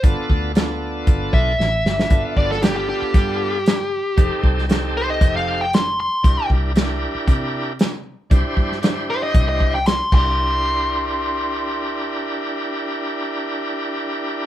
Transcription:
<<
  \new Staff \with { instrumentName = "Lead electric guitar" } { \time 4/4 \key c \mixolydian \tempo 4 = 116 r2 r8 e''4.~ | e''8 d''16 a'16 g'16 g'16 g'2~ g'8~ | g'8 r4 c''16 ees''8 f''8 g''16 c'''8 c'''8~ | c'''8 r2. r8 |
r4. c''16 ees''8 ees''8 g''16 c'''8 c'''8~ | c'''1~ | c'''1 | }
  \new Staff \with { instrumentName = "Tonewheel organ" } { \time 4/4 \key c \mixolydian <b d' f' a'>4 <b d' f' a'>2 r4 | <b d' f' a'>4 <b d' f' a'>2 r4 | <c' ees' g' a'>4 <c' ees' g' a'>2 r4 | <d' e' g' bes'>4 <d' e' g' bes'>2 r4 |
<d' e' g' c''>4 <d' e' g' c''>2 r8 <d' e' g' bes'>8~ | <d' e' g' bes'>1~ | <d' e' g' bes'>1 | }
  \new Staff \with { instrumentName = "Fingered electric bass" } { \clef bass \time 4/4 \key c \mixolydian g,,16 r16 d,4. g,,8 b,,8 a,,8 g,,8 | g,,16 r16 g,,4~ g,,16 r16 g,2 | f,,16 r16 c,4. f,,2 | c,16 r16 c,4~ c,16 r16 c2 |
c,16 r16 g,4. c,4. c,8~ | c,1~ | c,1 | }
  \new DrumStaff \with { instrumentName = "Drums" } \drummode { \time 4/4 <hh bd>8 bd8 <hh sn>4 <hh bd>8 bd8 sn8 sn16 sn16 | <hh bd>8 bd16 sn16 <hh sn>4 <hh bd>4 <hh sn>4 | <hh bd>8 bd16 sn16 <hh sn>4 <hh bd>4 <hh sn>4 | <hh bd>8 bd8 <hh sn>4 <hh bd>4 <hh sn>4 |
<hh bd>8 bd16 sn16 <hh sn>4 <hh bd>8 bd8 <hh sn>8 <cymc bd>8 | r4 r4 r4 r4 | r4 r4 r4 r4 | }
>>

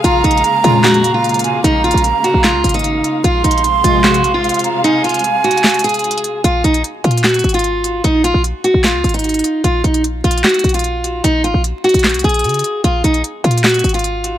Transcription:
<<
  \new Staff \with { instrumentName = "Flute" } { \time 4/4 \key bes \minor \tempo 4 = 150 bes''2.~ bes''8 aes''8 | bes''2. r4 | c'''2.~ c'''8 bes''8 | aes''1 |
r1 | r1 | r1 | r1 |
r1 | }
  \new Staff \with { instrumentName = "Steel-string acoustic guitar" } { \time 4/4 \key bes \minor f'8 ees'8 r8 f'8 ges'8. f'4~ f'16 | ees'8 f'8 r8 ges'8 f'8. ees'4~ ees'16 | f'8 ees'8 r8 f'8 ges'8. f'4~ f'16 | ees'8 f'8 r8 ges'4 aes'4. |
f'8 ees'8 r8 f'8 ges'8. f'4~ f'16 | ees'8 f'8 r8 ges'8 f'8. ees'4~ ees'16 | f'8 ees'8 r8 f'8 ges'8. f'4~ f'16 | ees'8 f'8 r8 ges'4 aes'4. |
f'8 ees'8 r8 f'8 ges'8. f'4~ f'16 | }
  \new Staff \with { instrumentName = "String section" } { \clef bass \time 4/4 \key bes \minor <des aes bes f''>1~ | <des aes bes f''>1 | <c aes f''>1~ | <c aes f''>1 |
r1 | r1 | r1 | r1 |
r1 | }
  \new Staff \with { instrumentName = "Analog polysynth" } { \clef bass \time 4/4 \key bes \minor r4. <f, des aes>4 r4. | r1 | r4. <f, c aes>4 r4. | r1 |
r1 | r1 | r1 | r1 |
r1 | }
  \new Staff \with { instrumentName = "808-style bass" } { \clef bass \time 4/4 \key bes \minor bes,,8 bes,,8 r8 bes,2~ bes,8 | bes,,8. bes,,8 r8 bes,,8 des,16 aes,,4 r8 | bes,,8 bes,,4 bes,,4.~ bes,,16 r8. | r1 |
bes,,8 bes,,8 r8 bes,4 aes,,4. | bes,,8. bes,,8 r8 bes,,8 des,16 aes,,4 r8 | bes,,8 bes,,4 bes,,8 r8 bes,,4. | bes,,8 aes,,16 bes,,8 r8 bes,,8 c,16 bes,,8 des8 r8 |
bes,,8 bes,,8 r8 bes,4 aes,,4. | }
  \new DrumStaff \with { instrumentName = "Drums" } \drummode { \time 4/4 \tuplet 3/2 { hh16 r16 r16 hh16 hh16 hh16 } hh8 hh8 <hc hh sn>16 hh16 hh8 hh32 hh32 hh32 hh32 hh8 | \tuplet 3/2 { hh16 r16 r16 hh16 hh16 hh16 } hh8 hh8 <hc hh sn>8 hh32 hh32 hh32 hh32 hh8 hh8 | \tuplet 3/2 { hh16 r16 r16 hh16 hh16 hh16 } hh8 hh8 <hc hh sn>16 hh16 hh8 hh32 hh32 hh32 hh32 hh8 | hh8 hh32 hh32 hh32 hh32 \tuplet 3/2 { hh16 r16 r16 hh16 hh16 hh16 } <hc hh sn>32 hh32 hh32 hh32 hh32 hh32 hh32 hh32 \tuplet 3/2 { hh16 hh16 hh16 hh16 r16 r16 } |
hh8 hh16 hh16 \tuplet 3/2 { hh16 r16 r16 hh16 hh16 hh16 } <hc hh sn>32 hh32 hh32 hh32 hh32 hh32 hh32 hh32 hh8 hh8 | hh8 hh8 hh8 hh8 <hc hh sn>8 hh32 hh32 hh32 hh32 hh32 hh32 hh32 hh32 hh8 | hh8 hh16 hh16 \tuplet 3/2 { hh16 r16 r16 hh16 hh16 hh16 } <hc hh sn>32 hh32 hh32 hh32 hh32 hh32 hh32 hh32 hh8 hh8 | hh8 hh8 hh8 hh32 hh32 hh32 hh32 <hc hh sn>32 hh32 hh32 hh32 hh32 hh32 hh32 hh32 hh32 hh32 hh32 hh32 hh8 |
hh8 hh16 hh16 \tuplet 3/2 { hh16 r16 r16 hh16 hh16 hh16 } <hc hh sn>32 hh32 hh32 hh32 hh32 hh32 hh32 hh32 hh8 hh8 | }
>>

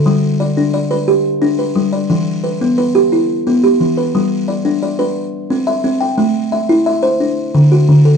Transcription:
<<
  \new Staff \with { instrumentName = "Kalimba" } { \time 12/8 \key g \major \tempo 4. = 118 a'8 r8 d''4 d''4 g'4. b'4 d''8~ | d''8 r8 b'4 b'4 e'4. g'4 b'8~ | b'8 r8 d''4 d''4. r4 e''4 g''8~ | g''8 r8 e''4 e''4 d'4. fis'4 a'8 | }
  \new Staff \with { instrumentName = "Kalimba" } { \time 12/8 \key g \major g4 r8 d'4 b'4 r8 d'4 g4 | e4 r8 b4 g'4 r8 b4 e4 | g4 r8 d'4 b'8 r4 c'4 c'4 | a4 r8 e'4 c''8 r4 d4 d4 | }
>>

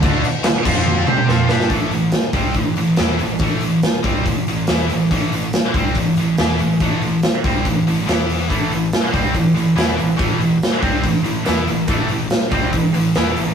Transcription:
<<
  \new Staff \with { instrumentName = "Distorted electric guitar" } { \clef bass \time 4/4 \key d \major \tempo 4 = 142 <d a d'>8 r4 <f c' f'>4 <c' g' c''>8 <f c' f'>8 <g d' g'>8 | <a, e a>8 <a, e>8 r8 <c g c'>8 <a, e>8 <a, e>8 <e b e'>8 <a, e>8 | <a, e a>8 <a, e>8 r8 <c g c'>8 <a, e>8 <a, e>8 <e b e'>8 <a, e>8 | <a, e a>8 <a, e>8 r8 <c g c'>8 <a, e>8 <a, e>8 <e b e'>8 <a, e>8 |
<a, e a>8 <a, e>8 r8 <c g c'>8 <a, e>8 <a, e>8 <e b e'>4 | <a, e a>8 <a, e>8 r8 <c g c'>8 <a, e>8 <a, e>8 <e b e'>8 <a, e>8 | <a, e a>8 <a, e>8 r8 <c g c'>8 <a, e>8 <a, e>8 <e b e'>8 <a, e>8 | <a, e a>8 <a, e>8 r8 <c g c'>8 <a, e>8 <a, e>8 <e b e'>8 <a, e>8 | }
  \new Staff \with { instrumentName = "Distorted electric guitar" } { \clef bass \time 4/4 \key d \major <d a d'>8 r4 <f c' f'>4 <c' g' c''>8 <f c' f'>8 <g d' g'>8 | <a, e a>8 <a, e>8 r8 <c g c'>8 <a, e>8 <a, e>8 <e b e'>8 <a, e>8 | <a, e a>8 <a, e>8 r8 <c g c'>8 <a, e>8 <a, e>8 <e b e'>8 <a, e>8 | <a, e a>8 <a, e>8 r8 <c g c'>8 <a, e>8 <a, e>8 <e b e'>8 <a, e>8 |
<a, e a>8 <a, e>8 r8 <c g c'>8 <a, e>8 <a, e>8 <e b e'>4 | <a, e a>8 <a, e>8 r8 <c g c'>8 <a, e>8 <a, e>8 <e b e'>8 <a, e>8 | <a, e a>8 <a, e>8 r8 <c g c'>8 <a, e>8 <a, e>8 <e b e'>8 <a, e>8 | <a, e a>8 <a, e>8 r8 <c g c'>8 <a, e>8 <a, e>8 <e b e'>8 <a, e>8 | }
  \new Staff \with { instrumentName = "Distorted electric guitar" } { \clef bass \time 4/4 \key d \major <d a d'>8 r4 <f c' f'>4 <c' g' c''>8 <f c' f'>8 <g d' g'>8 | r1 | r1 | r1 |
r1 | <a, e a>8 <a, e>8 r8 <c g c'>8 <a, e>8 <a, e>8 <e b e'>8 <a, e>8 | <a, e a>8 <a, e>8 r8 <c g c'>8 <a, e>8 <a, e>8 <e b e'>8 <a, e>8 | <a, e a>8 <a, e>8 r8 <c g c'>8 <a, e>8 <a, e>8 <e b e'>8 <a, e>8 | }
  \new Staff \with { instrumentName = "Picked electric bass" } { \clef bass \time 4/4 \key d \major d,8 r4 f,4 c8 f,8 g,8 | a,,8 a,,8 r8 c,8 a,,8 a,,8 e,8 a,,8 | a,,8 a,,8 r8 c,8 a,,8 a,,8 e,8 a,,8 | a,,8 a,,8 r8 c,8 a,,8 a,,8 e,8 a,,8 |
a,,8 a,,8 r8 c,8 a,,8 a,,8 e,4 | a,,8 a,,8 r8 c,8 a,,8 a,,8 e,8 a,,8 | a,,8 a,,8 r8 c,8 a,,8 a,,8 e,8 a,,8 | a,,8 a,,8 r8 c,8 a,,8 a,,8 e,8 a,,8 | }
  \new DrumStaff \with { instrumentName = "Drums" } \drummode { \time 4/4 <cymc bd>8 cymc8 <cymc sn>8 <cymc bd>8 tommh8 toml16 toml16 sn8 sn16 sn16 | <hho bd>8 hho8 <hho sn>8 <hho bd>8 <hho bd>8 hho8 <hho sn>8 hho8 | <hho bd>8 hho8 <hho sn>8 <hho bd>8 <hho bd>8 hho8 <hho sn>8 hho8 | <hho bd>8 hho8 <hho sn>8 <hho bd>8 <hho bd>8 hho8 <hho sn>8 hho8 |
<hho bd>8 hho8 <hho sn>8 <hho bd>8 <hho bd>8 hho8 <hho sn>8 hho8 | <hho bd>8 hho8 <hho sn>8 <hho bd>8 <hho bd>8 hho8 <hho sn>8 hho8 | <hho bd>8 hho8 <hho sn>8 <hho bd>8 <hho bd>8 hho8 <hho sn>8 hho8 | <hho bd>8 hho8 <hho sn>8 <hho bd>8 <hho bd>8 hho8 <hho sn>8 hho8 | }
>>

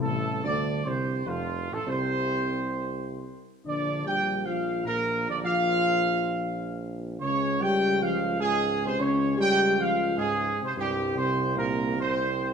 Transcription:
<<
  \new Staff \with { instrumentName = "Trumpet section" } { \time 3/4 \key bes \lydian \tempo 4 = 101 \tuplet 3/2 { a'4 d''8~ d''8 c''4 } f'8. a'16 | c''2~ c''8 r8 | \tuplet 3/2 { d''4 g''8~ g''8 f''4 } bes'8. d''16 | f''2~ f''8 r8 |
\tuplet 3/2 { des''4 g''8~ g''8 f''4 } aes'8. c''16 | \tuplet 3/2 { des''4 g''8~ g''8 f''4 } aes'8. c''16 | \tuplet 3/2 { g'4 c''8~ c''8 bes'4 } c''4 | }
  \new Staff \with { instrumentName = "French horn section" } { \time 3/4 \key bes \lydian \tuplet 3/2 { a4 d'8~ d'8 c'4 } f8. a16 | c'2~ c'8 r8 | \tuplet 3/2 { d'4 g'8~ g'8 f'4 } bes8. d'16 | f'2~ f'8 r8 |
\tuplet 3/2 { des'4 g'8~ g'8 f'4 } aes8. c'16 | \tuplet 3/2 { des'4 g'8~ g'8 f'4 } aes8. c'16 | \tuplet 3/2 { g4 c'8~ c'8 bes4 } c'4 | }
  \new Staff \with { instrumentName = "Trombone section" } { \clef bass \time 3/4 \key bes \lydian \tuplet 3/2 { a,4 d8~ d8 c4 } f,8. a,16 | c2~ c8 r8 | \tuplet 3/2 { d4 g8~ g8 f4 } bes,8. d16 | f2~ f8 r8 |
\tuplet 3/2 { des4 g8~ g8 f4 } aes,8. c16 | \tuplet 3/2 { des4 g8~ g8 f4 } aes,8. c16 | \tuplet 3/2 { g,4 c8~ c8 bes,4 } c4 | }
  \new Staff \with { instrumentName = "Tuba" } { \clef bass \time 3/4 \key bes \lydian \tuplet 3/2 { a,,4 d,8~ d,8 c,4 } f,,8. a,,16 | c,2~ c,8 r8 | bes,,2.~ | bes,,2. |
des,2.~ | des,2. | c,2. | }
>>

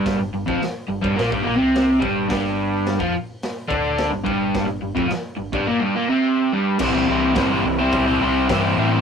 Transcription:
<<
  \new Staff \with { instrumentName = "Overdriven electric guitar" } { \clef bass \time 4/4 \key c \lydian \tempo 4 = 107 <g, g>16 g,16 g,16 <f, f>16 r8 g,16 <g, g>16 <bes, bes>16 <g, g>16 <bes, bes>16 <c c'>8. <g, g>8 | <g, g>4~ <g, g>16 <f f'>16 r4 <d d'>8. g,16 <g, g>8~ | <g, g>16 g,16 g,16 <f, f>16 r8 g,16 <g, g>16 <bes, bes>16 <g, g>16 <bes, bes>16 <c c'>8. <g, g>8 | <c e g c' e' c''>16 <g c' e' c''>16 <g c' e' c''>8 <c e g c' e' c''>16 <g c' e' c''>8 <g c' e' c''>8 <g c' e' c''>16 <g c' e' c''>8 <c e g c' e' c''>8 <g c' e' c''>16 <g c' e' c''>16 | }
  \new Staff \with { instrumentName = "Fingered electric bass" } { \clef bass \time 4/4 \key c \lydian g,,16 g,,16 g,,16 f,,16 r8 g,,16 g,,16 bes,,16 g,,16 bes,,16 c,8. g,,8 | g,,4~ g,,16 f,16 r4 d,8. g,,16 g,,8~ | g,,16 g,,16 g,,16 f,,16 r8 g,,16 g,,16 r2 | c,8 c,8 g,,8 c,8 c,8 c,8 g,8 a,8 | }
  \new DrumStaff \with { instrumentName = "Drums" } \drummode { \time 4/4 <hho bd sn>8. bd16 <hho sn>8. bd16 <hho sn>16 bd8. <hho sn>8 bd8 | <hho bd sn>4 <hho sn>16 bd8. <hho sn>8 bd8 <hho sn>8 bd8 | <hho bd sn>8. bd16 <hho sn>8. bd16 r4 r4 | <cymc bd>4 <hho bd sn>4 <hho bd>4 <hho bd sn>4 | }
>>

